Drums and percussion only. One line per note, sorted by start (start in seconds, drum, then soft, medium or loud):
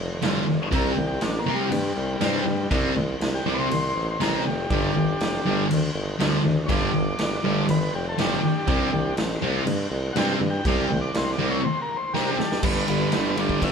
0.22 snare loud
0.22 crash medium
0.72 kick loud
0.72 crash medium
1.21 snare loud
1.21 crash medium
1.72 crash medium
2.21 snare loud
2.21 crash medium
2.71 kick loud
2.71 crash medium
3.21 snare loud
3.21 crash medium
3.71 crash medium
4.21 snare loud
4.21 crash medium
4.70 kick loud
4.70 crash medium
5.20 snare loud
5.20 crash medium
5.71 crash medium
6.20 snare loud
6.20 crash medium
6.69 kick loud
6.69 crash medium
7.19 snare loud
7.19 crash medium
7.69 crash medium
8.18 snare loud
8.18 crash medium
8.68 kick loud
8.68 crash medium
9.17 snare loud
9.17 crash medium
9.67 crash medium
10.16 snare loud
10.16 crash medium
10.65 kick loud
10.65 crash medium
11.15 snare loud
11.15 crash medium
12.15 snare medium
12.40 snare medium
12.52 snare loud
12.63 kick loud
12.63 crash loud
12.88 ride medium
13.12 snare loud
13.12 ride loud
13.37 ride medium
13.49 kick medium
13.62 kick loud
13.62 ride loud